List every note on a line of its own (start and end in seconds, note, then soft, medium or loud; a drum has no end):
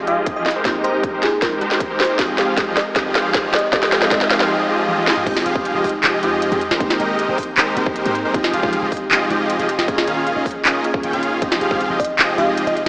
0.00 0.48 G#3 medium
0.00 0.48 C4 medium
0.00 0.48 D#4 medium
0.00 0.48 G4 loud
0.00 riser medium
0.07 0.34 F3 medium
0.07 0.34 F4 medium
0.07 0.34 G4 medium
0.07 0.34 G#4 medium
0.07 0.34 D#5 loud
0.07 0.19 F5 medium
0.07 closed hi-hat medium
0.26 kick medium
0.26 closed hi-hat medium
0.36 0.45 F3 medium
0.36 0.45 F4 medium
0.36 0.45 G4 medium
0.36 0.45 G#4 medium
0.36 0.42 D#5 medium
0.36 0.45 D#5 loud
0.46 0.52 D#5 medium
0.46 snare medium
0.46 closed hi-hat soft
0.51 closed hi-hat medium
0.56 0.63 G#3 medium
0.56 0.63 D#4 medium
0.56 0.63 G4 medium
0.56 0.63 A#4 medium
0.56 0.63 C5 medium
0.64 0.82 G#3 medium
0.64 0.91 A#3 medium
0.64 0.92 C4 medium
0.64 0.82 D#4 medium
0.64 0.92 D#4 medium
0.64 0.82 G4 medium
0.64 0.92 G4 loud
0.64 0.82 A#4 medium
0.64 kick medium
0.64 snare medium
0.64 closed hi-hat medium
0.84 1.11 G#3 medium
0.84 1.11 D#4 medium
0.84 1.11 G4 medium
0.84 1.11 A#4 medium
0.84 0.95 C5 medium
0.84 1.11 D#5 loud
0.84 closed hi-hat medium
0.92 2.16 A#3 medium
0.92 2.16 C4 medium
0.92 2.17 D#4 medium
0.92 2.18 G4 medium
1.03 kick medium
1.03 closed hi-hat medium
1.13 1.22 G#3 medium
1.13 1.22 D#4 medium
1.13 1.22 G4 medium
1.13 1.22 A#4 medium
1.13 1.22 C5 medium
1.23 1.40 G#4 medium
1.23 snare medium
1.23 closed hi-hat medium
1.42 1.59 G#3 medium
1.42 1.59 D#4 medium
1.42 1.59 G4 medium
1.42 1.59 A#4 medium
1.42 1.53 A#4 medium
1.42 1.59 C5 medium
1.42 kick medium
1.42 snare medium
1.42 closed hi-hat medium
1.61 1.88 G#3 medium
1.61 1.88 D#4 medium
1.61 1.88 G4 medium
1.61 1.88 A#4 medium
1.61 1.88 C5 loud
1.61 closed hi-hat medium
1.71 snare medium
1.80 kick medium
1.80 closed hi-hat medium
1.90 1.99 G#3 medium
1.90 1.99 D#4 medium
1.90 1.99 G4 medium
1.90 1.99 A#4 medium
1.90 1.99 C5 loud
2.00 2.19 C5 medium
2.00 snare medium
2.00 closed hi-hat soft
2.05 closed hi-hat medium
2.10 2.17 G#3 medium
2.10 2.17 D#4 medium
2.10 2.17 G4 medium
2.10 2.17 A#4 medium
2.10 2.17 C5 medium
2.18 2.36 F3 medium
2.18 2.45 G#3 medium
2.18 2.45 C4 medium
2.18 2.46 D#4 medium
2.18 2.36 F4 medium
2.18 2.46 G4 medium
2.18 2.36 G#4 medium
2.18 2.36 D#5 medium
2.18 kick medium
2.18 snare medium
2.18 closed hi-hat medium
2.38 2.65 F3 medium
2.38 2.65 F4 medium
2.38 2.65 G4 medium
2.38 2.65 G#4 medium
2.38 2.65 F5 medium
2.38 snare medium
2.38 closed hi-hat medium
2.46 2.93 G#3 medium
2.46 2.94 C4 medium
2.46 2.95 D#4 medium
2.46 2.95 G4 medium
2.57 kick medium
2.57 snare medium
2.57 closed hi-hat medium
2.67 2.76 F3 medium
2.67 2.76 F4 medium
2.67 2.76 G4 medium
2.67 2.76 G#4 medium
2.67 2.76 D#5 medium
2.77 2.94 D#5 medium
2.77 snare medium
2.77 closed hi-hat medium
2.95 3.13 F3 medium
2.95 3.22 G#3 medium
2.95 3.22 C4 medium
2.95 3.23 D#4 medium
2.95 3.13 F4 medium
2.95 3.13 G4 medium
2.95 3.23 G4 loud
2.95 3.13 G#4 medium
2.95 3.13 D#5 medium
2.95 kick medium
2.95 snare medium
2.95 closed hi-hat medium
3.15 3.42 F3 medium
3.15 3.42 F4 medium
3.15 3.42 G4 medium
3.15 3.42 G#4 medium
3.15 3.42 F5 loud
3.15 snare medium
3.15 closed hi-hat medium
3.23 3.70 G#3 medium
3.23 3.71 C4 medium
3.23 3.72 D#4 medium
3.27 3.72 G4 medium
3.34 kick loud
3.34 snare medium
3.34 closed hi-hat medium
3.44 3.53 F3 medium
3.44 3.53 F4 medium
3.44 3.53 G4 medium
3.44 3.53 G#4 medium
3.44 3.53 D#5 medium
3.54 3.71 D#5 medium
3.54 snare medium
3.54 closed hi-hat soft
3.59 closed hi-hat medium
3.72 3.90 F3 medium
3.72 3.98 G#3 medium
3.72 3.99 C4 medium
3.72 4.00 D#4 medium
3.72 3.90 F4 medium
3.72 3.90 G4 medium
3.72 4.00 G4 loud
3.72 3.90 G#4 medium
3.72 4.02 D#5 medium
3.72 3.90 D#5 medium
3.72 kick medium
3.72 snare medium
3.72 closed hi-hat medium
3.83 snare medium
3.92 4.10 F3 medium
3.92 4.10 F4 medium
3.92 4.10 G4 medium
3.92 4.10 G#4 medium
3.92 4.10 F5 loud
3.92 snare medium
3.92 closed hi-hat medium
4.00 4.09 G#3 medium
4.00 4.09 C4 medium
4.00 4.10 D#4 medium
4.00 snare medium
4.04 4.11 G4 medium
4.10 4.28 F3 medium
4.10 4.37 G#3 loud
4.10 4.38 C4 medium
4.10 4.38 D#4 medium
4.10 4.28 F4 medium
4.10 4.28 G4 medium
4.10 4.38 G4 loud
4.10 4.28 G#4 medium
4.10 4.40 D#5 medium
4.10 kick medium
4.10 snare loud
4.10 closed hi-hat medium
4.21 snare medium
4.30 4.48 F3 medium
4.30 4.48 F4 medium
4.30 4.48 G4 medium
4.30 4.48 G#4 medium
4.30 4.48 F5 loud
4.30 snare loud
4.30 closed hi-hat medium
4.38 4.47 G#3 medium
4.38 4.48 C4 medium
4.38 4.49 D#4 medium
4.38 4.49 G4 medium
4.38 snare medium
4.50 4.67 F3 medium
4.50 4.67 F4 medium
4.50 4.67 G4 medium
4.50 4.67 G#4 medium
4.50 4.67 D#5 loud
4.50 swell medium
4.69 4.86 F3 medium
4.69 4.86 F4 medium
4.69 4.86 G4 medium
4.69 4.86 G#4 medium
4.69 4.86 D#5 loud
4.88 5.05 F3 medium
4.88 5.05 F4 medium
4.88 5.05 G4 medium
4.88 5.05 G#4 medium
4.88 5.05 D#5 loud
4.88 high tom medium
4.98 high tom medium
5.07 5.24 F3 medium
5.07 5.24 F4 medium
5.07 5.24 G4 medium
5.07 5.24 G#4 medium
5.07 5.24 D#5 loud
5.07 snare medium
5.17 mid tom medium
5.26 5.44 F1 loud
5.26 5.44 F3 medium
5.26 5.52 G#3 loud
5.26 5.53 C4 medium
5.26 5.53 D#4 medium
5.26 5.44 G4 medium
5.26 5.54 G4 loud
5.26 5.44 G#4 medium
5.26 5.44 D#5 loud
5.26 kick loud
5.26 closed hi-hat medium
5.26 crash loud
5.26 impact medium
5.37 snare medium
5.46 5.73 F1 medium
5.46 5.73 F3 medium
5.46 5.73 F4 medium
5.46 5.73 G4 medium
5.46 5.73 G#4 medium
5.46 5.73 F5 loud
5.46 closed hi-hat medium
5.54 6.20 G#3 medium
5.54 6.21 C4 medium
5.54 6.21 D#4 medium
5.54 kick loud
5.58 6.22 G4 medium
5.65 closed hi-hat medium
5.75 5.82 F1 loud
5.75 5.84 F3 medium
5.75 5.84 F4 medium
5.75 5.84 G4 medium
5.75 5.84 G#4 medium
5.75 5.84 D#5 medium
5.84 kick medium
5.84 open hi-hat loud
5.89 closed hi-hat medium
6.04 6.24 F1 medium
6.04 6.21 F3 medium
6.04 6.21 F4 medium
6.04 6.21 G4 medium
6.04 6.21 G#4 medium
6.04 6.21 D#5 medium
6.04 clap loud
6.04 closed hi-hat medium
6.22 6.50 F2 loud
6.22 6.50 F3 medium
6.22 6.60 G#3 medium
6.22 6.60 C4 medium
6.22 6.60 D#4 medium
6.22 6.50 F4 medium
6.22 6.50 G4 medium
6.22 6.61 G4 loud
6.22 6.50 G#4 medium
6.22 6.50 D#5 loud
6.22 closed hi-hat medium
6.42 closed hi-hat medium
6.52 6.69 F2 medium
6.52 6.60 F3 loud
6.52 6.60 F4 medium
6.52 6.60 G4 medium
6.52 6.60 G#4 medium
6.52 6.60 D#5 loud
6.52 closed hi-hat medium
6.61 closed hi-hat medium
6.71 6.79 G#1 medium
6.71 6.78 G#3 medium
6.71 6.78 D#4 medium
6.71 6.78 G4 medium
6.71 6.78 A#4 medium
6.71 6.78 C5 medium
6.71 snare medium
6.80 6.98 G#1 loud
6.80 6.98 G#3 medium
6.80 7.06 A#3 medium
6.80 7.07 C4 medium
6.80 7.07 D#4 medium
6.80 6.98 G4 medium
6.80 7.08 G4 loud
6.80 6.98 A#4 medium
6.80 6.98 C5 loud
6.80 kick loud
6.80 closed hi-hat medium
6.90 snare medium
7.00 7.27 G#1 loud
7.00 7.26 G#3 medium
7.00 7.26 D#4 medium
7.00 7.27 G4 medium
7.00 7.26 A#4 medium
7.00 7.27 D#5 loud
7.00 closed hi-hat medium
7.07 7.74 A#3 medium
7.07 7.74 C4 medium
7.07 7.75 D#4 medium
7.12 7.76 G4 medium
7.19 closed hi-hat medium
7.29 7.36 G#1 loud
7.29 7.38 G#3 medium
7.29 7.38 D#4 medium
7.29 7.38 G4 medium
7.29 7.38 A#4 medium
7.29 7.38 C5 medium
7.38 kick medium
7.38 open hi-hat medium
7.43 closed hi-hat medium
7.57 7.75 G#1 medium
7.57 7.75 G#3 medium
7.57 7.75 D#4 medium
7.57 7.75 G4 medium
7.57 7.74 A#4 medium
7.57 7.75 C5 medium
7.57 clap loud
7.57 closed hi-hat medium
7.75 8.04 G#1 loud
7.75 8.03 G#3 medium
7.75 8.31 A#3 medium
7.75 8.32 C4 medium
7.75 8.03 D#4 medium
7.75 8.32 D#4 medium
7.75 8.03 G4 medium
7.75 8.33 G4 loud
7.75 8.03 A#4 medium
7.75 8.03 C5 loud
7.75 closed hi-hat medium
7.86 kick loud
7.96 closed hi-hat medium
8.06 8.26 G#2 medium
8.06 8.15 G#3 loud
8.06 8.15 D#4 medium
8.06 8.15 G4 medium
8.06 8.15 A#4 medium
8.06 8.15 C5 loud
8.06 closed hi-hat medium
8.15 closed hi-hat medium
8.25 8.32 G#1 loud
8.25 8.32 G#3 medium
8.25 8.32 D#4 medium
8.25 8.32 G4 medium
8.25 8.32 A#4 medium
8.25 8.32 C5 medium
8.33 8.52 F1 loud
8.33 8.51 F3 medium
8.33 8.60 G#3 loud
8.33 8.61 C4 medium
8.33 8.61 D#4 medium
8.33 8.51 F4 medium
8.33 8.51 G4 medium
8.33 8.61 G4 loud
8.33 8.51 G#4 medium
8.33 kick loud
8.33 closed hi-hat medium
8.44 snare medium
8.53 8.80 F1 loud
8.53 8.80 F3 medium
8.53 8.80 F4 medium
8.53 8.80 G4 medium
8.53 8.80 G#4 medium
8.53 8.80 F5 loud
8.53 closed hi-hat medium
8.61 9.27 G#3 medium
8.61 9.28 C4 medium
8.61 9.29 D#4 medium
8.61 kick loud
8.65 9.30 G4 medium
8.73 closed hi-hat medium
8.83 8.90 F1 loud
8.83 8.92 F3 medium
8.83 8.92 F4 medium
8.83 8.92 G4 medium
8.83 8.92 G#4 medium
8.83 8.92 D#5 medium
8.92 kick medium
8.92 open hi-hat medium
8.97 closed hi-hat medium
9.11 9.29 F1 loud
9.11 9.28 F3 medium
9.11 9.28 F4 medium
9.11 9.28 G4 medium
9.11 9.28 G#4 medium
9.11 9.28 D#5 medium
9.11 clap loud
9.11 closed hi-hat medium
9.29 9.57 F1 loud
9.29 9.57 F3 medium
9.29 9.85 G#3 medium
9.29 9.86 C4 medium
9.29 9.86 D#4 medium
9.29 9.57 F4 medium
9.29 9.57 G4 medium
9.29 9.57 G#4 medium
9.29 9.57 D#5 loud
9.29 closed hi-hat medium
9.33 9.87 G4 loud
9.50 closed hi-hat medium
9.59 9.77 F1 loud
9.59 9.69 F3 loud
9.59 9.68 F4 medium
9.59 9.68 G4 medium
9.59 9.68 G#4 medium
9.59 9.69 D#5 loud
9.59 closed hi-hat medium
9.69 closed hi-hat medium
9.79 9.86 F1 loud
9.79 9.86 F3 medium
9.79 9.86 F4 medium
9.79 9.86 G4 medium
9.79 9.86 G#4 medium
9.79 9.86 D#5 medium
9.79 snare medium
9.87 10.06 D#1 loud
9.87 10.05 D#3 medium
9.87 10.14 A#3 loud
9.87 10.15 C#4 medium
9.87 10.05 C#4 medium
9.87 10.05 F4 medium
9.87 10.15 F4 medium
9.87 10.05 G#4 medium
9.87 10.15 G#4 loud
9.87 10.05 D#5 loud
9.87 kick loud
9.87 closed hi-hat medium
9.98 snare medium
10.07 10.34 D#1 medium
10.07 10.34 D#3 medium
10.07 10.34 C#4 medium
10.07 10.34 F4 medium
10.07 10.34 G#4 medium
10.07 10.34 F5 loud
10.07 closed hi-hat medium
10.15 10.81 A#3 medium
10.15 10.82 C#4 medium
10.15 10.83 F4 medium
10.15 10.83 G#4 medium
10.27 closed hi-hat medium
10.36 10.43 D#1 loud
10.36 10.45 D#3 medium
10.36 10.45 C#4 medium
10.36 10.45 F4 medium
10.36 10.45 G#4 medium
10.36 10.45 D#5 medium
10.46 kick medium
10.46 open hi-hat medium
10.51 closed hi-hat medium
10.65 10.80 D#1 medium
10.65 10.82 D#3 medium
10.65 10.82 C#4 medium
10.65 10.82 F4 medium
10.65 10.82 G#4 medium
10.65 10.82 D#5 medium
10.65 clap loud
10.65 closed hi-hat medium
10.82 11.39 A#3 medium
10.82 11.39 C#4 medium
10.82 11.40 F4 medium
10.82 closed hi-hat medium
10.86 11.41 G#4 medium
10.94 kick loud
11.03 11.12 D#1 loud
11.03 11.11 D#3 medium
11.03 11.11 C#4 medium
11.03 11.11 F4 medium
11.03 11.11 G#4 medium
11.03 11.11 G5 loud
11.03 closed hi-hat medium
11.13 11.40 D#1 loud
11.13 11.40 D#3 medium
11.13 11.40 C#4 medium
11.13 11.40 F4 medium
11.13 11.40 G#4 medium
11.13 11.40 F5 medium
11.13 closed hi-hat medium
11.23 closed hi-hat medium
11.41 11.59 F1 loud
11.41 11.59 F3 medium
11.41 11.68 G#3 medium
11.41 11.69 C4 medium
11.41 11.69 D#4 medium
11.41 11.59 F4 medium
11.41 11.59 G4 medium
11.41 11.69 G4 loud
11.41 11.59 G#4 medium
11.41 11.59 D#5 medium
11.41 kick loud
11.41 closed hi-hat medium
11.52 snare medium
11.61 11.88 F1 medium
11.61 11.88 F3 medium
11.61 11.88 F4 medium
11.61 11.88 G4 medium
11.61 11.88 G#4 medium
11.61 11.88 F5 loud
11.61 closed hi-hat medium
11.69 12.35 G#3 medium
11.69 12.36 C4 medium
11.69 12.37 D#4 medium
11.69 kick loud
11.73 12.37 G4 medium
11.81 closed hi-hat medium
11.90 11.97 F1 loud
11.90 11.99 F3 medium
11.90 11.99 F4 medium
11.90 11.99 G4 medium
11.90 11.99 G#4 medium
11.90 11.99 D#5 medium
12.00 12.29 D#5 medium
12.00 kick medium
12.00 open hi-hat medium
12.05 closed hi-hat medium
12.19 12.36 F1 medium
12.19 12.36 F3 medium
12.19 12.36 F4 medium
12.19 12.36 G4 medium
12.19 12.36 G#4 medium
12.19 12.36 D#5 medium
12.19 clap loud
12.19 closed hi-hat medium
12.37 12.65 F1 loud
12.37 12.65 F3 medium
12.37 12.75 G#3 medium
12.37 12.75 C4 medium
12.37 12.76 D#4 medium
12.37 12.65 F4 medium
12.37 12.65 G4 medium
12.37 12.76 G4 loud
12.37 12.65 G#4 medium
12.37 12.65 D#5 loud
12.37 12.49 F5 medium
12.37 closed hi-hat medium
12.57 closed hi-hat medium
12.67 12.84 F1 loud
12.67 12.76 F3 medium
12.67 12.76 F4 medium
12.67 12.76 G4 medium
12.67 12.76 G#4 medium
12.67 12.73 D#5 medium
12.67 12.76 D#5 loud
12.67 closed hi-hat medium
12.76 12.83 D#5 medium
12.76 closed hi-hat medium